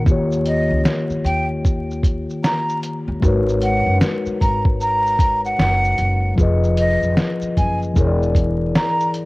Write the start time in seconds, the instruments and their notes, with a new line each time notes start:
0.04 upright bass D#2, tine electric piano D#3 A#3 F4, kick, shaker
0.10 tine electric piano G4 C#5
0.32 shaker
0.46 flute D#5, closed hi-hat, shaker
0.70 upright bass C#2
0.85 snare, shaker
1.10 muted upright bass stroke, shaker
1.24 upright bass D#2, flute G5, closed hi-hat, shaker
1.65 kick, shaker
1.91 shaker
2.03 kick, closed hi-hat, shaker
2.30 shaker
2.44 flute A#5, snare, shaker
2.69 shaker
2.83 closed hi-hat, shaker
3.08 upright bass D#2
3.20 upright bass G#1, tine electric piano G#3 D#4 F#4, kick, shaker
3.25 tine electric piano A#4 B4 C#5
3.48 shaker
3.62 flute F#5, closed hi-hat, shaker
3.86 upright bass F#1
4.01 snare, shaker
4.26 muted upright bass stroke, shaker
4.41 upright bass G#1, flute A#5, kick, closed hi-hat, shaker
4.65 kick
4.81 flute A#5, shaker
5.07 shaker
5.19 kick, closed hi-hat, shaker
5.45 flute F#5, shaker
5.59 upright bass F#1, snare, shaker
5.84 shaker
5.98 upright bass F#1, closed hi-hat, shaker
6.36 upright bass F1, tine electric piano F3 F4 G#4, kick, shaker
6.41 tine electric piano B4 D#5
6.64 shaker
6.77 flute D#5, closed hi-hat, shaker
7.02 upright bass F1, shaker
7.17 snare, shaker
7.41 muted upright bass stroke, shaker
7.57 upright bass F#1, flute G#5, kick, closed hi-hat, shaker
7.82 shaker
7.93 upright bass E1, tine electric piano E3 E4 G#4, kick, shaker
7.99 tine electric piano A#4 C#5
8.07 tine electric piano D5
8.22 shaker
8.35 kick, closed hi-hat, shaker
8.75 flute A#5, snare, shaker
9.00 shaker
9.14 closed hi-hat, shaker